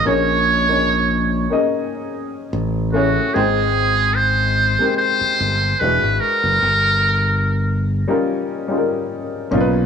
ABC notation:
X:1
M:4/4
L:1/16
Q:"Swing 16ths" 1/4=73
K:Ab
V:1 name="Muted trumpet"
d8 z6 _G2 | A4 c4 c4 =B2 _B2- | B6 z8 z2 |]
V:2 name="Upright piano"
[B,DEAd]3 [B,DEAd]3 z [B,DEAe]4- [B,DEAe] z2 [=A,^C=E^G^c]2 | [A,CEcg]6 z [A,CEGB]4- [A,CEGB] [^G,=D=E^F=B]3 z | z6 z [G,DEFB]3 [G,DEFAB]3 z [^A,,^C^D^E^A=B]2 |]
V:3 name="Fingered electric bass" clef=bass
B,,,6- B,,, z4 z =A,,,4 | A,,,6- A,,, z3 G,,,2 =E,,, ^G,,, z ^F,,, | G,,,6- G,,, z6 z =B,,,2 |]